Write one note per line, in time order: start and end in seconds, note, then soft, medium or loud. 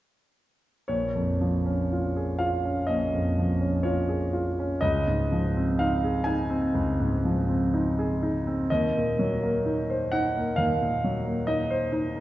0.88 2.85 A#1 soft
0.88 2.41 C#5 soft
1.15 1.56 F2 soft
1.41 1.81 F3 soft
1.66 2.06 C#4 soft
1.92 2.31 F4 soft
2.17 2.55 G#4 soft
2.39 2.79 F4 soft
2.39 2.88 F5 soft
2.64 3.03 C#4 soft
2.87 4.78 A#1 soft
2.87 3.84 D#5 soft
3.12 3.51 F2 soft
3.38 3.76 F3 soft
3.61 3.99 C#4 soft
3.83 4.24 F4 soft
3.83 4.81 C#5 soft
4.09 4.48 G#4 soft
4.33 4.72 F4 soft
4.59 4.83 C#4 soft
4.81 6.70 C#2 soft
4.81 5.79 D#5 medium
5.07 5.46 G#2 soft
5.32 5.70 F3 soft
5.56 5.94 C4 soft
5.79 6.18 D#4 soft
5.79 6.26 F5 medium
6.04 6.41 G#4 soft
6.24 6.64 D#4 soft
6.24 8.19 G#5 medium
6.50 6.89 C4 soft
6.75 8.65 C#2 soft
7.00 7.38 G#2 soft
7.25 7.63 F3 soft
7.49 7.87 C4 soft
7.74 8.12 D#4 soft
7.99 8.36 G#4 soft
8.23 8.61 D#4 soft
8.47 8.70 C4 soft
8.70 10.55 D#2 soft
8.70 10.13 D#5 medium
8.97 9.34 A#2 soft
9.19 9.57 F#3 soft
9.43 9.80 A#3 soft
9.66 10.03 D#4 soft
9.90 10.26 C5 soft
10.12 10.49 D#4 soft
10.12 10.58 F#5 medium
10.37 10.72 A#3 soft
10.56 12.20 D#2 soft
10.56 11.48 F5 medium
10.81 11.17 A#2 soft
11.04 11.40 F#3 soft
11.25 11.62 A#3 soft
11.47 11.84 D#4 soft
11.47 12.20 D#5 medium
11.70 12.07 C5 soft
11.92 12.20 D#4 soft
12.15 12.20 A#3 soft